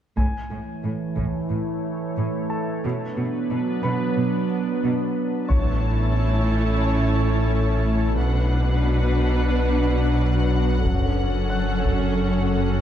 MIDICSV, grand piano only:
0, 0, Header, 1, 2, 480
1, 0, Start_track
1, 0, Tempo, 666667
1, 122, Time_signature, 4, 2, 24, 8
1, 9223, End_track
2, 0, Start_track
2, 0, Title_t, "Grand piano"
2, 0, Program_c, 0, 0
2, 122, Note_on_c, 0, 80, 32
2, 254, Control_c, 0, 64, 127
2, 1534, Note_off_c, 0, 80, 0
2, 1798, Note_on_c, 0, 69, 28
2, 1799, Note_on_c, 0, 81, 30
2, 2056, Control_c, 0, 64, 0
2, 2183, Control_c, 0, 64, 127
2, 2755, Note_on_c, 0, 71, 30
2, 2758, Note_on_c, 0, 83, 46
2, 3211, Note_off_c, 0, 69, 0
2, 3212, Note_off_c, 0, 81, 0
2, 3930, Note_off_c, 0, 71, 0
2, 3931, Note_off_c, 0, 83, 0
2, 3950, Note_on_c, 0, 73, 28
2, 3950, Note_on_c, 0, 85, 30
2, 3976, Control_c, 0, 64, 0
2, 4102, Control_c, 0, 64, 127
2, 5368, Note_off_c, 0, 73, 0
2, 5368, Note_off_c, 0, 85, 0
2, 5896, Control_c, 0, 64, 0
2, 6027, Control_c, 0, 64, 127
2, 7818, Control_c, 0, 64, 0
2, 7952, Control_c, 0, 64, 127
2, 8277, Note_on_c, 0, 78, 28
2, 8279, Note_on_c, 0, 90, 30
2, 9223, Note_off_c, 0, 78, 0
2, 9223, Note_off_c, 0, 90, 0
2, 9223, End_track
0, 0, End_of_file